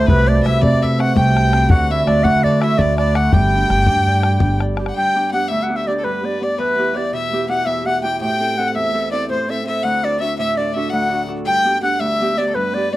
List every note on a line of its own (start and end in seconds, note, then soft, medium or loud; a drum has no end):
0.00 0.13 D3 medium
0.00 0.28 A3 medium
0.00 0.14 C4 medium
0.00 0.28 D4 medium
0.00 0.45 E4 medium
0.00 0.98 F#4 medium
0.00 2.06 F#4 medium
0.00 0.82 A4 soft
0.06 0.42 C2 medium
0.06 1.76 C3 medium
0.06 4.22 B3 medium
0.06 0.28 B4 medium
0.06 0.30 B4 loud
0.06 bodhran medium
0.27 0.62 A3 medium
0.27 0.62 D4 medium
0.27 0.42 D5 medium
0.27 0.48 D5 medium
0.43 0.61 C2 medium
0.43 0.98 C4 soft
0.43 1.90 E4 medium
0.43 0.63 E5 medium
0.43 0.62 E5 medium
0.43 bodhran soft
0.61 1.11 C3 medium
0.61 1.16 A3 medium
0.61 2.07 D4 medium
0.61 0.83 D5 medium
0.61 0.84 D5 loud
0.61 bodhran medium
0.74 bodhran soft
0.82 1.35 A4 medium
0.82 1.00 E5 medium
0.82 1.03 E5 medium
0.82 bodhran soft
0.99 1.53 C4 medium
0.99 1.22 F#4 medium
0.99 1.18 F#5 medium
0.99 1.16 F#5 loud
0.99 bodhran medium
1.16 1.64 C2 medium
1.16 1.90 A3 medium
1.16 1.77 G4 medium
1.16 1.72 G5 loud
1.16 1.69 G5 medium
1.16 bodhran medium
1.36 2.43 A4 soft
1.36 bodhran medium
1.53 4.53 C4 medium
1.53 bodhran medium
1.70 2.03 D2 loud
1.70 3.38 D3 medium
1.70 2.24 F#4 loud
1.70 1.92 F#5 medium
1.70 1.90 F#5 loud
1.70 bodhran loud
1.90 2.23 A3 soft
1.90 2.62 E4 medium
1.90 2.08 E5 medium
1.90 2.06 E5 medium
2.06 2.23 D2 medium
2.06 2.44 D4 medium
2.06 2.62 F#4 medium
2.06 2.25 D5 medium
2.06 bodhran medium
2.23 2.73 D3 medium
2.23 2.79 A3 medium
2.23 3.16 F#4 medium
2.23 2.45 F#5 loud
2.23 2.43 F#5 medium
2.23 bodhran medium
2.35 bodhran soft
2.44 2.78 D4 medium
2.44 2.98 A4 medium
2.44 2.62 D5 medium
2.44 2.65 D5 medium
2.44 bodhran soft
2.61 6.11 E4 medium
2.61 3.16 F#4 medium
2.61 2.79 E5 loud
2.61 2.82 E5 medium
2.61 bodhran medium
2.78 3.27 D2 medium
2.78 6.12 A3 medium
2.78 2.98 D4 medium
2.78 2.97 D5 medium
2.78 bodhran medium
2.98 6.72 D4 medium
2.98 5.18 A4 soft
2.98 3.17 D5 medium
2.98 3.18 D5 medium
2.98 bodhran medium
3.15 3.39 F#4 medium
3.15 3.34 F#5 medium
3.15 3.35 F#5 medium
3.15 bodhran medium
3.32 3.66 G1 medium
3.32 5.00 G3 medium
3.32 6.47 G4 medium
3.32 4.61 G5 loud
3.32 4.61 G5 medium
3.32 bodhran medium
3.54 3.88 D4 soft
3.70 3.85 G1 medium
3.70 4.25 G4 soft
3.70 bodhran medium
3.87 4.35 G2 medium
3.87 4.41 D4 medium
3.87 bodhran medium
3.97 bodhran soft
4.06 4.62 D5 medium
4.06 bodhran soft
4.23 4.79 G4 medium
4.23 bodhran medium
4.40 4.89 G1 medium
4.40 5.15 D4 medium
4.40 bodhran medium
4.60 6.47 D5 soft
4.60 bodhran medium
4.77 5.16 G4 medium
4.77 bodhran medium
4.86 4.96 F#5 medium
4.86 bodhran medium
4.94 5.54 G2 medium
4.94 5.30 G5 medium
4.94 5.30 G5 loud
5.15 5.32 B3 soft
5.15 5.33 D4 soft
5.15 5.33 G4 soft
5.31 5.69 B3 soft
5.31 5.70 D4 soft
5.31 5.70 G4 medium
5.31 5.50 F#5 medium
5.31 5.49 F#5 medium
5.48 6.08 D2 medium
5.48 5.62 E5 medium
5.48 5.64 E5 medium
5.63 5.78 F#5 medium
5.69 5.87 B3 soft
5.69 5.88 D4 soft
5.69 5.88 G4 medium
5.76 5.89 E5 medium
5.76 5.86 E5 medium
5.87 6.23 B3 soft
5.87 6.24 D4 soft
5.87 6.24 G4 medium
5.87 6.05 D5 medium
5.87 5.93 D5 medium
5.99 6.06 A4 medium
6.04 6.63 G2 medium
6.04 6.27 B4 medium
6.04 6.44 B4 medium
6.23 6.40 B3 soft
6.23 6.41 D4 soft
6.23 6.41 G4 soft
6.23 6.41 D5 medium
6.41 6.78 B3 soft
6.41 9.21 D4 soft
6.41 6.79 G4 medium
6.41 6.60 D5 medium
6.41 6.58 D5 medium
6.58 7.65 E2 medium
6.58 6.96 B4 medium
6.58 6.98 B4 loud
6.78 6.96 B3 soft
6.78 6.96 E4 soft
6.78 6.97 G4 medium
6.95 7.32 B3 soft
6.95 7.32 E4 soft
6.95 7.33 G4 soft
6.95 7.12 D5 medium
6.95 7.16 D5 medium
7.13 8.25 B2 medium
7.13 7.47 E5 medium
7.13 7.51 E5 medium
7.32 7.48 B3 soft
7.32 7.48 E4 soft
7.32 7.49 G4 medium
7.48 7.86 B3 medium
7.48 7.86 E4 medium
7.48 7.87 G4 medium
7.48 7.68 F#5 medium
7.48 7.67 F#5 medium
7.65 8.25 E2 medium
7.65 7.88 E5 medium
7.65 7.86 E5 medium
7.86 8.03 B3 soft
7.86 8.04 E4 soft
7.86 8.04 G4 soft
7.86 8.01 F#5 medium
7.86 8.02 F#5 medium
8.02 8.46 B3 soft
8.02 8.40 E4 soft
8.02 10.09 G4 medium
8.02 8.18 G5 medium
8.02 8.19 G5 medium
8.20 8.79 A2 medium
8.20 8.59 G5 medium
8.20 8.69 G5 medium
8.40 8.58 C4 soft
8.40 8.58 E4 soft
8.40 8.59 A4 medium
8.58 8.93 C4 soft
8.58 8.94 E4 soft
8.58 8.94 A4 soft
8.58 8.74 F#5 medium
8.67 8.76 F#5 medium
8.74 9.34 E2 medium
8.74 9.09 E5 medium
8.74 9.11 E5 medium
8.94 9.11 C4 soft
8.94 9.12 E4 soft
8.94 9.12 A4 medium
9.11 9.48 C4 soft
9.11 9.49 E4 soft
9.11 9.49 A4 medium
9.11 9.27 D5 medium
9.29 9.88 A2 medium
9.29 9.51 C5 medium
9.29 9.48 C5 medium
9.49 9.63 C4 soft
9.49 9.66 E4 soft
9.49 9.69 A4 medium
9.49 9.66 E5 medium
9.49 9.65 E5 medium
9.64 11.71 C4 soft
9.64 12.28 E4 soft
9.64 9.85 E5 medium
9.64 9.86 E5 medium
9.69 10.04 A4 medium
9.83 10.91 D2 medium
9.83 10.05 F#5 medium
9.83 10.06 F#5 loud
10.03 10.20 D4 soft
10.03 10.21 F#4 soft
10.03 10.21 A4 soft
10.03 10.19 D5 medium
10.03 10.22 D5 medium
10.20 10.57 D4 soft
10.20 10.57 F#4 soft
10.20 10.58 A4 medium
10.20 10.36 E5 medium
10.20 10.37 E5 medium
10.38 11.51 A2 medium
10.38 10.59 E5 loud
10.38 10.56 E5 medium
10.57 10.75 D4 soft
10.57 10.76 F#4 soft
10.57 10.76 A4 medium
10.57 10.75 D5 medium
10.57 10.74 D5 medium
10.74 11.11 D4 medium
10.74 11.11 F#4 medium
10.74 11.12 A4 medium
10.74 10.91 E5 medium
10.90 11.51 D2 medium
10.90 11.28 F#5 medium
10.90 11.22 F#5 medium
11.11 11.28 D4 soft
11.11 11.28 F#4 soft
11.11 11.28 A4 soft
11.28 11.65 D4 soft
11.28 11.52 F#4 soft
11.28 12.97 A4 medium
11.45 12.05 G2 medium
11.45 11.80 G5 medium
11.45 11.81 G5 loud
11.65 11.81 B3 soft
11.65 11.82 D4 soft
11.65 11.82 G4 soft
11.82 12.21 B3 soft
11.82 12.21 D4 soft
11.82 12.22 G4 soft
11.82 12.02 F#5 medium
11.82 12.01 F#5 medium
12.00 12.60 D2 medium
12.00 12.39 E5 loud
12.00 12.40 E5 loud
12.21 12.37 B3 medium
12.21 12.38 D4 soft
12.21 12.38 G4 medium
12.38 12.74 B3 medium
12.38 12.75 D4 soft
12.38 12.76 G4 medium
12.38 12.56 D5 medium
12.38 12.48 D5 medium
12.49 12.58 A4 medium
12.55 12.97 G2 medium
12.55 12.76 B4 medium
12.55 12.94 B4 medium
12.74 12.92 B3 soft
12.74 12.93 D4 soft
12.74 12.94 G4 medium
12.74 12.92 D5 medium
12.92 12.97 B3 soft
12.92 12.97 D4 soft
12.92 12.97 D5 medium